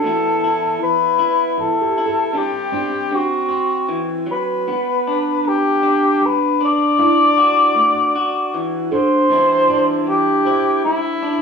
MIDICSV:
0, 0, Header, 1, 4, 480
1, 0, Start_track
1, 0, Tempo, 770218
1, 27, Time_signature, 3, 2, 24, 8
1, 7116, End_track
2, 0, Start_track
2, 0, Title_t, "Cor anglais"
2, 0, Program_c, 0, 69
2, 0, Note_on_c, 0, 69, 119
2, 490, Note_off_c, 0, 69, 0
2, 518, Note_on_c, 0, 71, 114
2, 966, Note_off_c, 0, 71, 0
2, 1003, Note_on_c, 0, 69, 97
2, 1483, Note_on_c, 0, 67, 99
2, 1492, Note_off_c, 0, 69, 0
2, 1963, Note_on_c, 0, 66, 92
2, 1973, Note_off_c, 0, 67, 0
2, 2510, Note_off_c, 0, 66, 0
2, 2688, Note_on_c, 0, 71, 95
2, 3416, Note_on_c, 0, 67, 110
2, 3425, Note_off_c, 0, 71, 0
2, 3898, Note_on_c, 0, 71, 94
2, 3908, Note_off_c, 0, 67, 0
2, 4129, Note_off_c, 0, 71, 0
2, 4142, Note_on_c, 0, 74, 126
2, 5373, Note_off_c, 0, 74, 0
2, 5568, Note_on_c, 0, 72, 114
2, 6251, Note_off_c, 0, 72, 0
2, 6284, Note_on_c, 0, 67, 94
2, 6730, Note_off_c, 0, 67, 0
2, 6760, Note_on_c, 0, 64, 107
2, 7116, Note_off_c, 0, 64, 0
2, 7116, End_track
3, 0, Start_track
3, 0, Title_t, "Felt piano"
3, 0, Program_c, 1, 0
3, 0, Note_on_c, 1, 66, 58
3, 0, Note_on_c, 1, 69, 43
3, 240, Note_off_c, 1, 66, 0
3, 376, Note_off_c, 1, 69, 0
3, 983, Note_on_c, 1, 64, 51
3, 1128, Note_on_c, 1, 67, 54
3, 1283, Note_on_c, 1, 69, 61
3, 1538, Note_off_c, 1, 64, 0
3, 1670, Note_off_c, 1, 67, 0
3, 1695, Note_on_c, 1, 62, 60
3, 1808, Note_off_c, 1, 69, 0
3, 2155, Note_off_c, 1, 62, 0
3, 4356, Note_on_c, 1, 64, 82
3, 4909, Note_off_c, 1, 64, 0
3, 5553, Note_on_c, 1, 69, 63
3, 6004, Note_off_c, 1, 69, 0
3, 6029, Note_on_c, 1, 74, 65
3, 6511, Note_on_c, 1, 72, 55
3, 6582, Note_off_c, 1, 74, 0
3, 7063, Note_off_c, 1, 72, 0
3, 7116, End_track
4, 0, Start_track
4, 0, Title_t, "Clean electric guitar"
4, 0, Program_c, 2, 27
4, 24, Note_on_c, 2, 45, 72
4, 27, Note_on_c, 2, 52, 65
4, 35, Note_on_c, 2, 59, 64
4, 41, Note_on_c, 2, 64, 65
4, 267, Note_off_c, 2, 64, 0
4, 275, Note_on_c, 2, 64, 68
4, 456, Note_off_c, 2, 45, 0
4, 489, Note_off_c, 2, 52, 0
4, 497, Note_on_c, 2, 52, 67
4, 735, Note_off_c, 2, 64, 0
4, 743, Note_on_c, 2, 64, 72
4, 932, Note_off_c, 2, 52, 0
4, 984, Note_on_c, 2, 40, 55
4, 1224, Note_off_c, 2, 64, 0
4, 1233, Note_on_c, 2, 64, 63
4, 1416, Note_off_c, 2, 40, 0
4, 1440, Note_off_c, 2, 59, 0
4, 1453, Note_on_c, 2, 50, 66
4, 1460, Note_on_c, 2, 55, 59
4, 1464, Note_on_c, 2, 60, 52
4, 1468, Note_off_c, 2, 64, 0
4, 1693, Note_off_c, 2, 60, 0
4, 1701, Note_on_c, 2, 60, 58
4, 1890, Note_off_c, 2, 50, 0
4, 1913, Note_off_c, 2, 60, 0
4, 1938, Note_on_c, 2, 50, 72
4, 1942, Note_off_c, 2, 55, 0
4, 1946, Note_on_c, 2, 60, 56
4, 2166, Note_off_c, 2, 60, 0
4, 2173, Note_on_c, 2, 60, 62
4, 2375, Note_off_c, 2, 50, 0
4, 2422, Note_on_c, 2, 52, 56
4, 2655, Note_off_c, 2, 52, 0
4, 2657, Note_on_c, 2, 54, 50
4, 2876, Note_off_c, 2, 60, 0
4, 2905, Note_off_c, 2, 54, 0
4, 2914, Note_on_c, 2, 43, 66
4, 2917, Note_on_c, 2, 59, 61
4, 3162, Note_on_c, 2, 62, 55
4, 3347, Note_off_c, 2, 43, 0
4, 3396, Note_on_c, 2, 50, 61
4, 3630, Note_off_c, 2, 62, 0
4, 3633, Note_on_c, 2, 62, 56
4, 3830, Note_off_c, 2, 50, 0
4, 3876, Note_on_c, 2, 43, 63
4, 4114, Note_off_c, 2, 62, 0
4, 4117, Note_on_c, 2, 62, 50
4, 4310, Note_off_c, 2, 43, 0
4, 4333, Note_off_c, 2, 59, 0
4, 4354, Note_on_c, 2, 50, 71
4, 4356, Note_off_c, 2, 62, 0
4, 4358, Note_on_c, 2, 62, 53
4, 4597, Note_on_c, 2, 66, 68
4, 4786, Note_off_c, 2, 50, 0
4, 4829, Note_on_c, 2, 57, 61
4, 5074, Note_off_c, 2, 66, 0
4, 5083, Note_on_c, 2, 66, 73
4, 5262, Note_off_c, 2, 57, 0
4, 5322, Note_on_c, 2, 52, 62
4, 5556, Note_off_c, 2, 52, 0
4, 5559, Note_on_c, 2, 50, 61
4, 5766, Note_off_c, 2, 66, 0
4, 5793, Note_off_c, 2, 50, 0
4, 5793, Note_on_c, 2, 48, 69
4, 5799, Note_on_c, 2, 52, 66
4, 5805, Note_off_c, 2, 62, 0
4, 5806, Note_on_c, 2, 55, 54
4, 5808, Note_on_c, 2, 62, 67
4, 5813, Note_on_c, 2, 64, 79
4, 6040, Note_off_c, 2, 62, 0
4, 6042, Note_on_c, 2, 62, 66
4, 6221, Note_off_c, 2, 48, 0
4, 6269, Note_off_c, 2, 52, 0
4, 6276, Note_on_c, 2, 52, 65
4, 6515, Note_off_c, 2, 64, 0
4, 6522, Note_on_c, 2, 64, 71
4, 6703, Note_off_c, 2, 52, 0
4, 6764, Note_on_c, 2, 43, 60
4, 6994, Note_off_c, 2, 62, 0
4, 6996, Note_on_c, 2, 62, 57
4, 7116, Note_off_c, 2, 43, 0
4, 7116, Note_off_c, 2, 55, 0
4, 7116, Note_off_c, 2, 62, 0
4, 7116, Note_off_c, 2, 64, 0
4, 7116, End_track
0, 0, End_of_file